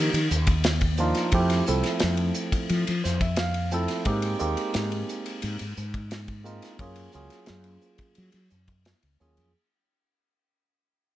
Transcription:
0.00 0.10 D#3 medium
0.00 0.18 F3 medium
0.00 0.18 A#3 medium
0.00 0.18 D4 medium
0.00 0.18 D#4 medium
0.00 0.18 G4 medium
0.13 0.27 D#3 medium
0.13 ride medium
0.31 1.12 D#2 medium
0.31 hi-hat pedal medium
0.47 kick medium
0.47 ride medium
0.64 snare medium
0.64 ride medium
0.81 kick medium
0.81 ride medium
0.97 1.30 F3 medium
0.97 1.30 A#3 medium
0.97 1.30 D4 medium
0.97 1.30 D#4 medium
0.97 1.31 F4 medium
0.97 hi-hat pedal medium
1.14 snare soft
1.14 ride medium
1.32 1.60 F2 medium
1.32 1.64 F3 medium
1.32 1.64 A3 medium
1.32 1.64 C4 medium
1.32 1.65 E4 medium
1.32 1.65 G4 medium
1.32 kick medium
1.32 ride medium
1.50 snare soft
1.50 ride medium
1.66 1.82 C2 medium
1.66 2.90 F3 medium
1.66 2.91 A3 medium
1.66 2.91 C4 medium
1.66 2.91 E4 medium
1.66 2.91 A4 medium
1.66 hi-hat pedal medium
1.83 snare soft
1.83 ride soft
1.99 2.30 F2 medium
1.99 snare medium
1.99 ride medium
2.17 ride soft
2.34 hi-hat pedal medium
2.52 kick medium
2.52 ride medium
2.69 2.83 F3 medium
2.69 ride medium
2.87 3.01 F3 medium
2.87 ride medium
3.04 3.86 F2 medium
3.04 3.20 C5 medium
3.04 snare soft
3.04 hi-hat pedal medium
3.21 3.37 E5 medium
3.21 kick medium
3.21 ride medium
3.36 3.70 F5 medium
3.36 snare medium
3.36 ride medium
3.54 ride medium
3.71 4.03 F3 medium
3.71 4.03 A3 medium
3.71 4.03 C4 medium
3.71 4.04 E4 medium
3.71 4.04 A4 medium
3.71 4.04 G5 medium
3.71 hi-hat pedal medium
3.88 snare soft
3.88 ride medium
4.05 4.33 G#2 medium
4.05 4.36 G#3 medium
4.05 4.37 A#3 medium
4.05 4.37 C4 medium
4.05 4.37 D#4 medium
4.05 4.37 G4 medium
4.05 kick medium
4.05 ride medium
4.22 ride medium
4.39 4.54 D#2 medium
4.39 5.63 G#3 medium
4.39 5.63 A#3 medium
4.39 5.63 C4 medium
4.39 5.64 D#4 medium
4.39 5.64 G4 medium
4.39 hi-hat pedal medium
4.57 ride medium
4.74 5.02 G#2 medium
4.74 snare medium
4.74 ride medium
4.92 ride medium
5.09 hi-hat pedal medium
5.26 ride medium
5.42 5.57 G#2 medium
5.42 ride medium
5.59 5.74 G#2 medium
5.59 ride medium
5.77 6.59 G#2 medium
5.77 hi-hat pedal medium
5.94 kick medium
5.94 ride medium
6.11 snare medium
6.11 ride medium
6.28 kick medium
6.28 ride soft
6.44 6.76 G#3 medium
6.44 6.76 A#3 medium
6.44 6.76 C4 medium
6.44 6.77 D#4 medium
6.44 6.77 F4 medium
6.44 hi-hat pedal medium
6.62 snare soft
6.62 ride medium
6.79 7.07 F#2 medium
6.79 7.10 F#3 medium
6.79 7.11 A#3 medium
6.79 7.11 C#4 medium
6.79 7.11 F4 medium
6.79 7.11 G#4 medium
6.79 kick medium
6.79 ride medium
6.95 ride medium
7.12 7.28 C#2 medium
7.12 8.37 F#3 medium
7.12 8.38 A#3 medium
7.12 8.38 C#4 medium
7.12 8.38 F4 medium
7.12 8.38 G#4 medium
7.12 hi-hat pedal medium
7.30 snare soft
7.30 ride soft
7.46 7.76 F#2 medium
7.46 snare medium
7.46 ride medium
7.64 ride soft
7.81 hi-hat pedal medium
7.98 kick medium
7.98 ride soft
8.15 8.31 F#3 medium
8.15 ride medium
8.32 8.47 F#3 medium
8.32 ride medium
8.50 8.92 F#2 medium
8.50 hi-hat pedal medium
8.68 kick medium
8.68 ride soft
8.85 snare medium
8.85 ride medium
9.03 9.18 C#2 medium
9.03 ride soft
9.20 9.36 D#2 medium
9.20 9.51 F#3 medium
9.20 9.51 A#3 medium
9.20 9.51 C#4 medium
9.20 9.51 F4 medium
9.20 9.52 G#4 medium
9.20 hi-hat pedal medium
9.37 9.53 F2 medium
9.37 ride soft

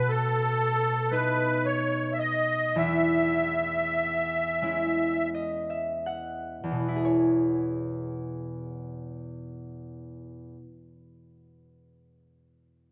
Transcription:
0.00 2.80 B2 medium
0.00 1.11 A3 soft
0.00 1.09 C#4 soft
0.00 0.47 G#4 soft
0.00 0.11 B4 medium
0.09 1.14 A4 medium
1.11 4.44 A3 soft
1.11 4.22 B3 soft
1.11 2.82 D#4 soft
1.11 1.66 B4 medium
1.65 2.13 C#5 medium
2.12 2.19 E5 soft
2.19 2.77 D#5 medium
2.76 6.62 E2 medium
2.76 5.29 E5 medium
4.62 6.88 G#3 soft
4.62 7.52 C#4 soft
4.62 6.88 E4 soft
5.34 5.76 D#5 soft
5.70 7.42 E5 soft
6.06 7.67 F#5 soft
6.64 10.54 E2 soft
6.71 10.61 B2 soft
6.80 10.56 B3 soft
6.88 10.64 E4 soft
6.96 10.72 G#4 soft
7.05 10.80 C#5 soft

